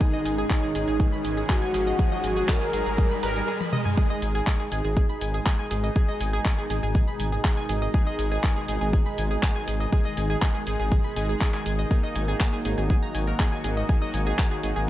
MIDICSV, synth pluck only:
0, 0, Header, 1, 2, 480
1, 0, Start_track
1, 0, Key_signature, 5, "minor"
1, 0, Tempo, 495868
1, 8, Time_signature, 4, 2, 24, 8
1, 14419, End_track
2, 0, Start_track
2, 0, Title_t, "Synth pluck"
2, 0, Program_c, 0, 84
2, 7, Note_on_c, 0, 68, 81
2, 99, Note_off_c, 0, 68, 0
2, 131, Note_on_c, 0, 75, 102
2, 218, Note_off_c, 0, 75, 0
2, 246, Note_on_c, 0, 80, 76
2, 309, Note_off_c, 0, 80, 0
2, 371, Note_on_c, 0, 68, 103
2, 429, Note_off_c, 0, 68, 0
2, 487, Note_on_c, 0, 68, 81
2, 579, Note_off_c, 0, 68, 0
2, 610, Note_on_c, 0, 68, 77
2, 669, Note_off_c, 0, 68, 0
2, 727, Note_on_c, 0, 68, 76
2, 764, Note_off_c, 0, 68, 0
2, 850, Note_on_c, 0, 68, 78
2, 908, Note_off_c, 0, 68, 0
2, 966, Note_on_c, 0, 68, 84
2, 1004, Note_off_c, 0, 68, 0
2, 1089, Note_on_c, 0, 83, 72
2, 1177, Note_off_c, 0, 83, 0
2, 1206, Note_on_c, 0, 80, 77
2, 1268, Note_off_c, 0, 80, 0
2, 1330, Note_on_c, 0, 68, 78
2, 1388, Note_off_c, 0, 68, 0
2, 1446, Note_on_c, 0, 68, 105
2, 1508, Note_off_c, 0, 68, 0
2, 1569, Note_on_c, 0, 80, 102
2, 1628, Note_off_c, 0, 80, 0
2, 1686, Note_on_c, 0, 68, 76
2, 1724, Note_off_c, 0, 68, 0
2, 1810, Note_on_c, 0, 75, 76
2, 1898, Note_off_c, 0, 75, 0
2, 1928, Note_on_c, 0, 68, 86
2, 2020, Note_off_c, 0, 68, 0
2, 2051, Note_on_c, 0, 75, 99
2, 2138, Note_off_c, 0, 75, 0
2, 2168, Note_on_c, 0, 80, 76
2, 2229, Note_off_c, 0, 80, 0
2, 2290, Note_on_c, 0, 68, 100
2, 2349, Note_off_c, 0, 68, 0
2, 2407, Note_on_c, 0, 68, 83
2, 2500, Note_off_c, 0, 68, 0
2, 2530, Note_on_c, 0, 68, 80
2, 2589, Note_off_c, 0, 68, 0
2, 2647, Note_on_c, 0, 68, 77
2, 2684, Note_off_c, 0, 68, 0
2, 2770, Note_on_c, 0, 68, 77
2, 2828, Note_off_c, 0, 68, 0
2, 2887, Note_on_c, 0, 68, 89
2, 2924, Note_off_c, 0, 68, 0
2, 3010, Note_on_c, 0, 83, 77
2, 3098, Note_off_c, 0, 83, 0
2, 3128, Note_on_c, 0, 71, 103
2, 3165, Note_off_c, 0, 71, 0
2, 3252, Note_on_c, 0, 80, 77
2, 3338, Note_off_c, 0, 80, 0
2, 3367, Note_on_c, 0, 68, 84
2, 3429, Note_off_c, 0, 68, 0
2, 3491, Note_on_c, 0, 83, 75
2, 3549, Note_off_c, 0, 83, 0
2, 3607, Note_on_c, 0, 75, 103
2, 3669, Note_off_c, 0, 75, 0
2, 3730, Note_on_c, 0, 80, 101
2, 3765, Note_off_c, 0, 80, 0
2, 3847, Note_on_c, 0, 68, 84
2, 3847, Note_on_c, 0, 80, 59
2, 3940, Note_off_c, 0, 68, 0
2, 3940, Note_off_c, 0, 80, 0
2, 3970, Note_on_c, 0, 87, 73
2, 3971, Note_on_c, 0, 75, 101
2, 4058, Note_off_c, 0, 75, 0
2, 4058, Note_off_c, 0, 87, 0
2, 4088, Note_on_c, 0, 80, 76
2, 4088, Note_on_c, 0, 92, 54
2, 4149, Note_off_c, 0, 80, 0
2, 4149, Note_off_c, 0, 92, 0
2, 4211, Note_on_c, 0, 68, 105
2, 4211, Note_on_c, 0, 80, 74
2, 4269, Note_off_c, 0, 68, 0
2, 4269, Note_off_c, 0, 80, 0
2, 4327, Note_on_c, 0, 68, 85
2, 4328, Note_on_c, 0, 80, 58
2, 4420, Note_off_c, 0, 68, 0
2, 4420, Note_off_c, 0, 80, 0
2, 4451, Note_on_c, 0, 68, 81
2, 4451, Note_on_c, 0, 80, 57
2, 4509, Note_off_c, 0, 68, 0
2, 4509, Note_off_c, 0, 80, 0
2, 4567, Note_on_c, 0, 68, 78
2, 4567, Note_on_c, 0, 80, 54
2, 4604, Note_off_c, 0, 68, 0
2, 4604, Note_off_c, 0, 80, 0
2, 4691, Note_on_c, 0, 68, 75
2, 4691, Note_on_c, 0, 80, 54
2, 4749, Note_off_c, 0, 68, 0
2, 4749, Note_off_c, 0, 80, 0
2, 4807, Note_on_c, 0, 80, 60
2, 4808, Note_on_c, 0, 68, 87
2, 4844, Note_off_c, 0, 80, 0
2, 4845, Note_off_c, 0, 68, 0
2, 4931, Note_on_c, 0, 83, 74
2, 5018, Note_off_c, 0, 83, 0
2, 5047, Note_on_c, 0, 80, 79
2, 5047, Note_on_c, 0, 92, 55
2, 5109, Note_off_c, 0, 80, 0
2, 5109, Note_off_c, 0, 92, 0
2, 5171, Note_on_c, 0, 68, 76
2, 5171, Note_on_c, 0, 80, 52
2, 5229, Note_off_c, 0, 68, 0
2, 5229, Note_off_c, 0, 80, 0
2, 5288, Note_on_c, 0, 80, 71
2, 5289, Note_on_c, 0, 68, 103
2, 5349, Note_off_c, 0, 80, 0
2, 5350, Note_off_c, 0, 68, 0
2, 5412, Note_on_c, 0, 80, 102
2, 5412, Note_on_c, 0, 92, 70
2, 5469, Note_off_c, 0, 80, 0
2, 5470, Note_off_c, 0, 92, 0
2, 5527, Note_on_c, 0, 68, 76
2, 5527, Note_on_c, 0, 80, 52
2, 5564, Note_off_c, 0, 68, 0
2, 5564, Note_off_c, 0, 80, 0
2, 5651, Note_on_c, 0, 75, 75
2, 5651, Note_on_c, 0, 87, 54
2, 5738, Note_off_c, 0, 75, 0
2, 5738, Note_off_c, 0, 87, 0
2, 5767, Note_on_c, 0, 68, 83
2, 5767, Note_on_c, 0, 80, 59
2, 5859, Note_off_c, 0, 68, 0
2, 5859, Note_off_c, 0, 80, 0
2, 5891, Note_on_c, 0, 75, 101
2, 5891, Note_on_c, 0, 87, 72
2, 5978, Note_off_c, 0, 75, 0
2, 5978, Note_off_c, 0, 87, 0
2, 6008, Note_on_c, 0, 80, 78
2, 6008, Note_on_c, 0, 92, 54
2, 6069, Note_off_c, 0, 80, 0
2, 6069, Note_off_c, 0, 92, 0
2, 6131, Note_on_c, 0, 68, 102
2, 6131, Note_on_c, 0, 80, 74
2, 6189, Note_off_c, 0, 68, 0
2, 6189, Note_off_c, 0, 80, 0
2, 6248, Note_on_c, 0, 68, 82
2, 6248, Note_on_c, 0, 80, 59
2, 6340, Note_off_c, 0, 68, 0
2, 6340, Note_off_c, 0, 80, 0
2, 6371, Note_on_c, 0, 68, 82
2, 6371, Note_on_c, 0, 80, 55
2, 6429, Note_off_c, 0, 68, 0
2, 6429, Note_off_c, 0, 80, 0
2, 6488, Note_on_c, 0, 68, 78
2, 6488, Note_on_c, 0, 80, 53
2, 6524, Note_off_c, 0, 80, 0
2, 6525, Note_off_c, 0, 68, 0
2, 6612, Note_on_c, 0, 68, 79
2, 6612, Note_on_c, 0, 80, 55
2, 6669, Note_off_c, 0, 80, 0
2, 6670, Note_off_c, 0, 68, 0
2, 6727, Note_on_c, 0, 68, 86
2, 6728, Note_on_c, 0, 80, 60
2, 6764, Note_off_c, 0, 68, 0
2, 6764, Note_off_c, 0, 80, 0
2, 6851, Note_on_c, 0, 83, 75
2, 6938, Note_off_c, 0, 83, 0
2, 6967, Note_on_c, 0, 80, 75
2, 6967, Note_on_c, 0, 92, 55
2, 7029, Note_off_c, 0, 80, 0
2, 7029, Note_off_c, 0, 92, 0
2, 7090, Note_on_c, 0, 68, 78
2, 7090, Note_on_c, 0, 80, 54
2, 7148, Note_off_c, 0, 68, 0
2, 7148, Note_off_c, 0, 80, 0
2, 7207, Note_on_c, 0, 68, 106
2, 7207, Note_on_c, 0, 80, 72
2, 7269, Note_off_c, 0, 68, 0
2, 7269, Note_off_c, 0, 80, 0
2, 7330, Note_on_c, 0, 80, 103
2, 7330, Note_on_c, 0, 92, 71
2, 7389, Note_off_c, 0, 80, 0
2, 7389, Note_off_c, 0, 92, 0
2, 7447, Note_on_c, 0, 68, 76
2, 7447, Note_on_c, 0, 80, 54
2, 7484, Note_off_c, 0, 68, 0
2, 7484, Note_off_c, 0, 80, 0
2, 7570, Note_on_c, 0, 75, 76
2, 7570, Note_on_c, 0, 87, 55
2, 7657, Note_off_c, 0, 87, 0
2, 7658, Note_off_c, 0, 75, 0
2, 7686, Note_on_c, 0, 68, 84
2, 7686, Note_on_c, 0, 80, 60
2, 7779, Note_off_c, 0, 68, 0
2, 7779, Note_off_c, 0, 80, 0
2, 7809, Note_on_c, 0, 75, 102
2, 7810, Note_on_c, 0, 87, 72
2, 7897, Note_off_c, 0, 75, 0
2, 7897, Note_off_c, 0, 87, 0
2, 7926, Note_on_c, 0, 80, 78
2, 7927, Note_on_c, 0, 92, 55
2, 7988, Note_off_c, 0, 80, 0
2, 7989, Note_off_c, 0, 92, 0
2, 8050, Note_on_c, 0, 68, 104
2, 8050, Note_on_c, 0, 80, 71
2, 8108, Note_off_c, 0, 80, 0
2, 8109, Note_off_c, 0, 68, 0
2, 8166, Note_on_c, 0, 80, 59
2, 8167, Note_on_c, 0, 68, 82
2, 8259, Note_off_c, 0, 68, 0
2, 8259, Note_off_c, 0, 80, 0
2, 8290, Note_on_c, 0, 68, 80
2, 8290, Note_on_c, 0, 80, 57
2, 8348, Note_off_c, 0, 80, 0
2, 8349, Note_off_c, 0, 68, 0
2, 8407, Note_on_c, 0, 68, 78
2, 8407, Note_on_c, 0, 80, 53
2, 8444, Note_off_c, 0, 68, 0
2, 8444, Note_off_c, 0, 80, 0
2, 8530, Note_on_c, 0, 68, 78
2, 8530, Note_on_c, 0, 80, 54
2, 8589, Note_off_c, 0, 68, 0
2, 8589, Note_off_c, 0, 80, 0
2, 8647, Note_on_c, 0, 68, 84
2, 8647, Note_on_c, 0, 80, 60
2, 8684, Note_off_c, 0, 68, 0
2, 8684, Note_off_c, 0, 80, 0
2, 8770, Note_on_c, 0, 83, 76
2, 8858, Note_off_c, 0, 83, 0
2, 8887, Note_on_c, 0, 80, 76
2, 8887, Note_on_c, 0, 92, 54
2, 8949, Note_off_c, 0, 80, 0
2, 8949, Note_off_c, 0, 92, 0
2, 9010, Note_on_c, 0, 68, 77
2, 9010, Note_on_c, 0, 80, 56
2, 9069, Note_off_c, 0, 68, 0
2, 9069, Note_off_c, 0, 80, 0
2, 9127, Note_on_c, 0, 80, 74
2, 9128, Note_on_c, 0, 68, 106
2, 9189, Note_off_c, 0, 68, 0
2, 9189, Note_off_c, 0, 80, 0
2, 9251, Note_on_c, 0, 80, 100
2, 9251, Note_on_c, 0, 92, 73
2, 9309, Note_off_c, 0, 80, 0
2, 9309, Note_off_c, 0, 92, 0
2, 9367, Note_on_c, 0, 80, 55
2, 9368, Note_on_c, 0, 68, 76
2, 9404, Note_off_c, 0, 68, 0
2, 9404, Note_off_c, 0, 80, 0
2, 9490, Note_on_c, 0, 75, 77
2, 9490, Note_on_c, 0, 87, 53
2, 9578, Note_off_c, 0, 75, 0
2, 9578, Note_off_c, 0, 87, 0
2, 9608, Note_on_c, 0, 68, 81
2, 9608, Note_on_c, 0, 80, 58
2, 9700, Note_off_c, 0, 68, 0
2, 9700, Note_off_c, 0, 80, 0
2, 9730, Note_on_c, 0, 75, 102
2, 9730, Note_on_c, 0, 87, 70
2, 9818, Note_off_c, 0, 75, 0
2, 9818, Note_off_c, 0, 87, 0
2, 9847, Note_on_c, 0, 80, 75
2, 9847, Note_on_c, 0, 92, 53
2, 9909, Note_off_c, 0, 80, 0
2, 9909, Note_off_c, 0, 92, 0
2, 9969, Note_on_c, 0, 80, 73
2, 9970, Note_on_c, 0, 68, 101
2, 10028, Note_off_c, 0, 68, 0
2, 10028, Note_off_c, 0, 80, 0
2, 10087, Note_on_c, 0, 68, 86
2, 10087, Note_on_c, 0, 80, 58
2, 10180, Note_off_c, 0, 68, 0
2, 10180, Note_off_c, 0, 80, 0
2, 10210, Note_on_c, 0, 68, 78
2, 10210, Note_on_c, 0, 80, 56
2, 10269, Note_off_c, 0, 68, 0
2, 10269, Note_off_c, 0, 80, 0
2, 10327, Note_on_c, 0, 68, 76
2, 10327, Note_on_c, 0, 80, 52
2, 10364, Note_off_c, 0, 68, 0
2, 10364, Note_off_c, 0, 80, 0
2, 10451, Note_on_c, 0, 68, 77
2, 10451, Note_on_c, 0, 80, 53
2, 10509, Note_off_c, 0, 68, 0
2, 10509, Note_off_c, 0, 80, 0
2, 10567, Note_on_c, 0, 80, 60
2, 10568, Note_on_c, 0, 68, 86
2, 10604, Note_off_c, 0, 68, 0
2, 10604, Note_off_c, 0, 80, 0
2, 10690, Note_on_c, 0, 83, 74
2, 10778, Note_off_c, 0, 83, 0
2, 10807, Note_on_c, 0, 80, 80
2, 10807, Note_on_c, 0, 92, 54
2, 10869, Note_off_c, 0, 80, 0
2, 10869, Note_off_c, 0, 92, 0
2, 10931, Note_on_c, 0, 68, 79
2, 10931, Note_on_c, 0, 80, 54
2, 10989, Note_off_c, 0, 68, 0
2, 10989, Note_off_c, 0, 80, 0
2, 11047, Note_on_c, 0, 80, 72
2, 11048, Note_on_c, 0, 68, 100
2, 11109, Note_off_c, 0, 68, 0
2, 11109, Note_off_c, 0, 80, 0
2, 11170, Note_on_c, 0, 80, 100
2, 11170, Note_on_c, 0, 92, 71
2, 11229, Note_off_c, 0, 80, 0
2, 11229, Note_off_c, 0, 92, 0
2, 11287, Note_on_c, 0, 68, 77
2, 11287, Note_on_c, 0, 80, 55
2, 11324, Note_off_c, 0, 68, 0
2, 11324, Note_off_c, 0, 80, 0
2, 11411, Note_on_c, 0, 75, 74
2, 11411, Note_on_c, 0, 87, 54
2, 11498, Note_off_c, 0, 75, 0
2, 11498, Note_off_c, 0, 87, 0
2, 11527, Note_on_c, 0, 68, 82
2, 11527, Note_on_c, 0, 80, 58
2, 11619, Note_off_c, 0, 68, 0
2, 11619, Note_off_c, 0, 80, 0
2, 11650, Note_on_c, 0, 75, 100
2, 11650, Note_on_c, 0, 87, 71
2, 11737, Note_off_c, 0, 87, 0
2, 11738, Note_off_c, 0, 75, 0
2, 11767, Note_on_c, 0, 80, 79
2, 11767, Note_on_c, 0, 92, 54
2, 11829, Note_off_c, 0, 80, 0
2, 11829, Note_off_c, 0, 92, 0
2, 11890, Note_on_c, 0, 68, 102
2, 11890, Note_on_c, 0, 80, 72
2, 11948, Note_off_c, 0, 68, 0
2, 11948, Note_off_c, 0, 80, 0
2, 12006, Note_on_c, 0, 68, 81
2, 12006, Note_on_c, 0, 80, 58
2, 12099, Note_off_c, 0, 68, 0
2, 12099, Note_off_c, 0, 80, 0
2, 12130, Note_on_c, 0, 68, 78
2, 12130, Note_on_c, 0, 80, 55
2, 12188, Note_off_c, 0, 68, 0
2, 12188, Note_off_c, 0, 80, 0
2, 12247, Note_on_c, 0, 68, 75
2, 12247, Note_on_c, 0, 80, 54
2, 12284, Note_off_c, 0, 68, 0
2, 12284, Note_off_c, 0, 80, 0
2, 12370, Note_on_c, 0, 68, 77
2, 12370, Note_on_c, 0, 80, 55
2, 12428, Note_off_c, 0, 68, 0
2, 12429, Note_off_c, 0, 80, 0
2, 12486, Note_on_c, 0, 68, 88
2, 12486, Note_on_c, 0, 80, 60
2, 12524, Note_off_c, 0, 68, 0
2, 12524, Note_off_c, 0, 80, 0
2, 12609, Note_on_c, 0, 82, 76
2, 12609, Note_on_c, 0, 94, 52
2, 12697, Note_off_c, 0, 82, 0
2, 12697, Note_off_c, 0, 94, 0
2, 12725, Note_on_c, 0, 80, 77
2, 12725, Note_on_c, 0, 92, 54
2, 12788, Note_off_c, 0, 80, 0
2, 12788, Note_off_c, 0, 92, 0
2, 12849, Note_on_c, 0, 82, 55
2, 12850, Note_on_c, 0, 70, 79
2, 12908, Note_off_c, 0, 70, 0
2, 12908, Note_off_c, 0, 82, 0
2, 12966, Note_on_c, 0, 68, 102
2, 12966, Note_on_c, 0, 80, 74
2, 13028, Note_off_c, 0, 68, 0
2, 13028, Note_off_c, 0, 80, 0
2, 13090, Note_on_c, 0, 80, 103
2, 13090, Note_on_c, 0, 92, 72
2, 13148, Note_off_c, 0, 80, 0
2, 13149, Note_off_c, 0, 92, 0
2, 13207, Note_on_c, 0, 68, 76
2, 13207, Note_on_c, 0, 80, 55
2, 13244, Note_off_c, 0, 68, 0
2, 13244, Note_off_c, 0, 80, 0
2, 13330, Note_on_c, 0, 75, 78
2, 13330, Note_on_c, 0, 87, 54
2, 13417, Note_off_c, 0, 87, 0
2, 13418, Note_off_c, 0, 75, 0
2, 13446, Note_on_c, 0, 68, 83
2, 13446, Note_on_c, 0, 80, 60
2, 13539, Note_off_c, 0, 68, 0
2, 13539, Note_off_c, 0, 80, 0
2, 13568, Note_on_c, 0, 75, 103
2, 13569, Note_on_c, 0, 87, 70
2, 13657, Note_off_c, 0, 75, 0
2, 13657, Note_off_c, 0, 87, 0
2, 13686, Note_on_c, 0, 80, 78
2, 13686, Note_on_c, 0, 92, 53
2, 13748, Note_off_c, 0, 80, 0
2, 13748, Note_off_c, 0, 92, 0
2, 13809, Note_on_c, 0, 80, 73
2, 13810, Note_on_c, 0, 68, 103
2, 13868, Note_off_c, 0, 80, 0
2, 13869, Note_off_c, 0, 68, 0
2, 13926, Note_on_c, 0, 68, 86
2, 13926, Note_on_c, 0, 80, 58
2, 14019, Note_off_c, 0, 68, 0
2, 14019, Note_off_c, 0, 80, 0
2, 14049, Note_on_c, 0, 68, 82
2, 14049, Note_on_c, 0, 80, 55
2, 14108, Note_off_c, 0, 68, 0
2, 14108, Note_off_c, 0, 80, 0
2, 14166, Note_on_c, 0, 68, 79
2, 14166, Note_on_c, 0, 80, 54
2, 14203, Note_off_c, 0, 80, 0
2, 14204, Note_off_c, 0, 68, 0
2, 14289, Note_on_c, 0, 68, 80
2, 14289, Note_on_c, 0, 80, 56
2, 14348, Note_off_c, 0, 68, 0
2, 14348, Note_off_c, 0, 80, 0
2, 14419, End_track
0, 0, End_of_file